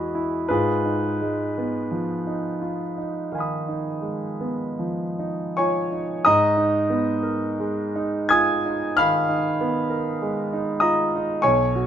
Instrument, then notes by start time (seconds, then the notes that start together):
grand piano
Already playing: E2 E3 G#3 B3 E4 F#4 G#4 B4 D#5
0.15 E4
0.48 G#2 F4 G#4 B4
0.85 D#4
1.22 G#3
1.58 B3
1.91 F3
2.27 D#4
2.62 F4
2.98 D#4
3.32 D#3 F5 G#5
3.38 B5 D#6
3.68 D#4
4.02 G#3
4.41 B3
4.79 F3
5.19 D#4
5.57 F4 C#5 G#5 C#6
5.92 D#4
6.25 G#2 D#5 A#5 D#6
6.57 D#4
6.90 B3
7.23 A#4
7.60 G#3
7.96 D#4
8.29 F4 G#5 D#6 G#6
8.66 D#4
8.97 D#3 F5 B5 F6
9.29 D#4
9.61 B3
9.90 A#4
10.22 G#3
10.53 D#4
10.80 F4 D#5 A#5 D#6
11.16 D#4
11.42 B1 C#5 G#5 C#6
11.75 F#4